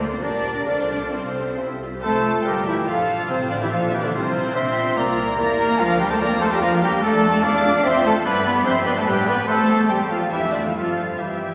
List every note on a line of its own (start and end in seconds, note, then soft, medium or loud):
0.00 0.17 D2 loud
0.00 0.05 A#3 loud
0.00 0.11 D4 medium
0.00 0.21 F4 medium
0.00 0.21 A4 medium
0.00 0.11 A4 medium
0.00 0.10 A#4 medium
0.00 0.05 A#4 medium
0.00 0.11 A#4 medium
0.00 0.22 C5 medium
0.00 0.20 D5 medium
0.10 0.15 C4 loud
0.10 0.22 F4 medium
0.10 0.22 C5 medium
0.10 0.17 C5 medium
0.10 0.22 D5 medium
0.20 0.62 A#1 medium
0.20 0.65 D4 loud
0.20 0.32 D4 medium
0.20 0.66 G4 medium
0.20 0.65 A#4 medium
0.20 0.66 A#4 medium
0.20 0.33 A#4 medium
0.20 0.66 D5 medium
0.20 0.65 D5 loud
0.20 0.66 D5 loud
0.34 0.45 G4 medium
0.34 0.45 D5 medium
0.44 0.56 D4 medium
0.44 0.56 A#4 medium
0.56 0.67 G4 medium
0.56 0.67 D5 medium
0.65 1.07 C2 medium
0.65 0.79 C4 medium
0.65 1.12 D4 loud
0.65 0.97 A4 medium
0.65 1.79 A4 medium
0.65 0.78 A4 medium
0.65 0.98 C5 medium
0.65 1.12 D5 loud
0.65 1.10 F5 medium
0.80 0.91 F4 medium
0.80 0.91 C5 medium
0.92 1.03 C4 medium
0.92 1.02 A4 medium
1.03 1.14 F4 medium
1.03 1.14 C5 medium
1.11 1.53 C2 medium
1.11 1.82 C4 medium
1.11 1.18 E4 medium
1.11 1.57 A4 medium
1.11 1.55 C5 medium
1.11 1.81 C5 medium
1.11 1.80 C5 medium
1.11 1.57 F5 medium
1.26 1.30 F4 medium
1.37 1.42 G4 medium
1.50 1.60 F4 medium
1.56 1.98 C2 medium
1.56 1.68 E4 medium
1.56 1.81 G4 medium
1.56 1.80 C5 medium
1.56 1.81 E5 medium
1.83 1.87 F4 medium
1.94 2.04 G4 medium
2.02 2.43 F1 loud
2.02 2.43 A3 loud
2.02 2.24 C4 medium
2.02 3.26 F4 medium
2.02 2.43 A4 loud
2.02 2.47 C5 loud
2.02 2.43 C5 medium
2.02 2.42 A5 loud
2.02 2.43 A5 loud
2.26 2.87 A3 medium
2.44 2.87 G1 medium
2.44 2.65 G3 loud
2.44 2.68 G3 loud
2.44 2.67 G4 medium
2.44 2.70 G4 loud
2.44 2.65 A#4 loud
2.44 2.53 A#4 loud
2.44 2.66 G5 loud
2.44 2.56 G5 medium
2.65 2.87 E3 medium
2.65 2.88 E3 medium
2.65 2.77 E4 medium
2.65 2.91 E4 loud
2.65 2.75 G4 medium
2.65 2.74 G4 loud
2.65 2.73 E5 loud
2.70 2.77 E5 medium
2.86 3.29 A#1 medium
2.86 3.29 F3 loud
2.86 3.29 D4 medium
2.86 3.29 F4 medium
2.86 3.32 F4 loud
2.86 3.27 A4 medium
2.86 3.30 A4 medium
2.86 3.28 F5 loud
2.86 3.29 F5 loud
3.28 3.71 A1 medium
3.28 3.36 C3 loud
3.28 3.38 C3 loud
3.28 3.51 C4 medium
3.28 3.72 C4 medium
3.28 3.51 C4 loud
3.28 3.49 F4 loud
3.28 3.49 F4 medium
3.28 3.71 F4 medium
3.28 3.51 C5 loud
3.28 3.50 C5 medium
3.49 3.60 D3 medium
3.49 3.61 D3 medium
3.49 3.55 D4 medium
3.49 3.62 D4 medium
3.49 3.55 F4 loud
3.49 3.55 F4 medium
3.49 3.61 D5 loud
3.49 3.55 D5 medium
3.60 3.65 E3 medium
3.60 3.71 E3 medium
3.60 3.66 E4 medium
3.60 3.68 E4 medium
3.60 3.71 G4 medium
3.60 3.67 G4 medium
3.60 3.71 E5 loud
3.60 3.72 E5 loud
3.70 4.13 A#1 medium
3.70 3.92 F3 medium
3.70 3.92 F3 loud
3.70 4.14 A#3 medium
3.70 4.13 D4 medium
3.70 3.81 F4 medium
3.70 3.93 F4 loud
3.70 3.81 A4 loud
3.70 3.92 A4 loud
3.70 3.92 F5 loud
3.70 3.79 F5 medium
3.90 4.03 E3 medium
3.90 4.04 E3 loud
3.90 4.03 E4 medium
3.90 3.98 E4 loud
3.90 4.03 G4 loud
3.90 4.05 G4 loud
3.90 3.95 E5 loud
3.90 3.96 E5 medium
4.01 4.13 D3 medium
4.01 4.14 D3 medium
4.01 4.08 D4 medium
4.01 4.14 D4 medium
4.01 4.11 F4 medium
4.01 4.13 F4 medium
4.01 4.06 D5 loud
4.01 4.06 D5 medium
4.12 4.54 C2 medium
4.12 4.55 C3 loud
4.12 4.54 C3 loud
4.12 4.22 A3 medium
4.12 4.54 C4 medium
4.12 4.55 E4 medium
4.12 4.54 F4 medium
4.12 4.54 F4 loud
4.12 4.53 C5 loud
4.33 4.54 C4 loud
4.54 4.96 A#1 loud
4.54 4.96 C4 loud
4.54 4.97 C4 loud
4.54 4.96 D4 medium
4.54 4.95 F4 medium
4.54 4.99 C5 loud
4.54 4.97 C5 loud
4.54 4.95 E5 loud
4.54 4.99 E5 loud
4.54 4.96 C6 loud
4.54 4.95 C6 loud
4.95 5.37 C2 loud
4.95 5.36 A#3 medium
4.95 5.36 A#3 loud
4.95 5.17 F4 loud
4.95 5.37 A#4 medium
4.95 5.37 A#4 loud
4.95 5.37 D5 medium
4.95 5.38 D5 loud
4.95 5.36 A#5 loud
4.95 5.37 A#5 medium
5.16 5.79 E4 medium
5.37 5.78 E2 medium
5.37 5.78 A#3 loud
5.37 5.57 G4 medium
5.37 5.78 A#4 loud
5.37 5.82 A#4 loud
5.37 5.78 D5 loud
5.37 5.79 D5 loud
5.37 5.78 A#5 loud
5.37 5.79 A#5 loud
5.58 5.66 G4 loud
5.78 6.19 D2 loud
5.78 6.00 F3 loud
5.78 6.19 D4 medium
5.78 6.60 F4 loud
5.78 6.00 F4 loud
5.78 6.01 F4 loud
5.78 5.98 A#4 loud
5.78 5.99 A#4 loud
5.78 5.99 F5 loud
5.99 6.10 G3 loud
5.99 6.10 G4 loud
5.99 6.04 A#4 loud
5.99 6.11 A#4 loud
5.99 6.03 G5 loud
5.99 6.10 G5 loud
6.08 6.20 A3 loud
6.08 6.21 A3 loud
6.08 6.22 A4 loud
6.08 6.21 A4 loud
6.08 6.14 C5 loud
6.08 6.20 C5 loud
6.08 6.19 A5 loud
6.08 6.15 A5 loud
6.19 6.61 F2 loud
6.19 6.41 A#3 loud
6.19 6.29 A#3 loud
6.19 6.60 C4 loud
6.19 6.41 A#4 loud
6.19 6.30 A#4 loud
6.19 6.25 D5 loud
6.19 6.40 D5 loud
6.19 6.40 A#5 loud
6.19 6.41 A#5 loud
6.40 6.51 A3 loud
6.40 6.51 A4 loud
6.40 6.46 A4 loud
6.40 6.52 C5 loud
6.40 6.51 C5 loud
6.40 6.51 A5 loud
6.40 6.45 A5 loud
6.51 6.56 G3 loud
6.51 6.63 G3 loud
6.51 6.62 G4 loud
6.51 6.56 G4 loud
6.51 6.61 A#4 medium
6.51 6.60 A#4 loud
6.51 6.61 G5 loud
6.51 6.56 G5 loud
6.60 7.03 E2 loud
6.60 6.81 F3 loud
6.60 7.03 A#3 loud
6.60 7.02 D4 medium
6.60 6.84 F4 loud
6.60 6.71 F4 loud
6.60 6.67 A#4 loud
6.60 6.81 A#4 loud
6.60 6.81 F5 loud
6.60 6.70 F5 loud
6.81 7.03 G3 loud
6.81 6.92 G3 loud
6.81 7.02 G4 loud
6.81 6.92 G4 loud
6.81 7.03 A#4 loud
6.81 7.02 A#4 loud
6.81 7.02 G5 loud
6.81 7.03 G5 loud
7.02 7.42 F2 loud
7.02 8.25 A3 loud
7.02 7.43 A3 loud
7.02 7.43 D4 loud
7.02 7.43 A4 loud
7.02 7.42 D5 loud
7.02 7.44 A5 loud
7.42 7.84 E2 loud
7.42 7.85 D4 loud
7.42 7.64 E4 loud
7.42 7.73 D5 loud
7.42 7.85 D5 loud
7.42 7.83 F5 loud
7.42 7.84 F5 loud
7.42 7.84 D6 loud
7.42 7.85 D6 loud
7.63 8.25 F4 loud
7.83 8.25 F2 loud
7.83 8.04 C4 loud
7.83 8.05 C4 loud
7.83 7.94 C5 loud
7.83 7.95 C5 loud
7.83 8.04 E5 loud
7.83 8.07 E5 loud
7.83 8.05 C6 loud
8.04 8.25 A3 loud
8.04 8.14 A3 loud
8.04 8.15 A4 loud
8.04 8.25 A4 loud
8.04 8.25 C5 loud
8.04 8.27 C5 loud
8.04 8.25 A5 loud
8.04 8.15 A5 loud
8.24 8.65 G2 loud
8.24 9.07 G3 loud
8.24 8.32 B3 loud
8.24 8.41 B3 loud
8.24 8.66 E4 loud
8.24 8.46 B4 loud
8.24 8.35 B4 loud
8.24 8.44 D5 loud
8.24 8.43 B5 loud
8.24 8.45 B5 loud
8.42 8.64 B3 loud
8.42 8.65 B3 loud
8.42 8.66 D5 loud
8.42 8.51 D5 loud
8.42 8.52 B5 loud
8.42 8.54 B5 loud
8.47 8.56 B4 loud
8.64 9.06 F2 loud
8.64 8.85 C4 loud
8.64 8.86 C4 loud
8.64 9.06 D4 medium
8.64 8.75 C5 loud
8.64 8.76 C5 loud
8.64 8.85 E5 loud
8.64 8.85 C6 loud
8.64 8.86 C6 loud
8.83 8.89 B3 loud
8.83 8.90 B3 loud
8.83 8.92 B4 loud
8.83 8.96 D5 loud
8.83 8.91 D5 loud
8.83 8.95 B5 loud
8.83 8.91 B5 loud
8.88 8.92 B4 loud
8.95 9.06 A3 loud
8.95 9.01 A3 loud
8.95 9.02 A4 loud
8.95 9.10 A4 loud
8.95 9.00 C5 loud
8.95 9.01 C5 medium
8.95 9.06 A5 loud
8.95 9.07 A5 loud
9.04 9.46 A2 loud
9.04 9.26 G3 loud
9.04 9.15 G3 loud
9.04 9.47 B3 medium
9.04 9.47 D4 medium
9.04 9.27 G4 loud
9.04 9.11 B4 loud
9.04 9.26 B4 loud
9.04 9.26 G5 loud
9.04 9.27 G5 loud
9.08 9.30 G4 loud
9.25 9.47 B3 loud
9.25 9.37 B3 loud
9.25 9.48 B4 loud
9.25 9.47 B4 loud
9.25 9.31 D5 loud
9.25 9.46 D5 loud
9.25 9.47 B5 loud
9.25 9.35 B5 loud
9.45 10.27 E2 loud
9.45 9.86 G3 medium
9.45 9.87 A3 loud
9.45 9.86 C4 medium
9.45 9.88 A4 loud
9.45 9.76 C5 loud
9.45 9.86 C5 loud
9.45 9.87 A5 loud
9.45 9.89 A5 loud
9.88 10.09 G3 medium
9.88 10.10 G3 medium
9.88 10.30 G3 medium
9.88 10.30 C4 medium
9.88 10.10 G4 medium
9.88 10.00 G4 medium
9.88 9.94 C5 medium
9.88 10.09 C5 medium
9.88 9.96 G5 medium
9.88 10.11 G5 loud
10.09 10.31 F3 medium
10.09 10.18 F3 medium
10.09 10.31 F4 medium
10.09 10.21 F4 loud
10.09 10.16 A4 medium
10.09 10.31 A4 medium
10.09 10.31 F5 loud
10.09 10.31 F5 medium
10.30 10.75 F2 medium
10.30 10.52 E3 loud
10.30 10.53 E3 medium
10.30 10.76 A3 medium
10.30 10.76 D4 medium
10.30 10.53 E4 medium
10.30 10.43 E4 loud
10.30 10.52 G4 loud
10.30 10.55 G4 loud
10.30 10.52 E5 loud
10.30 10.53 E5 loud
10.52 10.64 D3 medium
10.52 10.64 D4 medium
10.52 10.58 D4 medium
10.52 10.63 F4 medium
10.52 10.64 F4 medium
10.52 10.64 D5 medium
10.63 10.68 F3 medium
10.63 10.71 F3 medium
10.63 10.70 F4 medium
10.63 10.73 A4 medium
10.63 10.70 A4 medium
10.63 10.75 F5 medium
10.63 10.74 F5 medium
10.74 11.54 G2 medium
10.74 11.19 F3 medium
10.74 11.20 G3 medium
10.74 11.18 C4 medium
10.74 11.19 F4 medium
10.74 11.22 F4 medium
10.74 10.99 A4 medium
10.74 11.21 A4 medium
10.74 11.19 F5 loud
10.74 11.19 F5 medium
11.19 11.54 E3 medium
11.19 11.54 G3 medium
11.19 11.54 C4 medium
11.19 11.54 E4 medium
11.19 11.54 G4 medium
11.19 11.54 E5 medium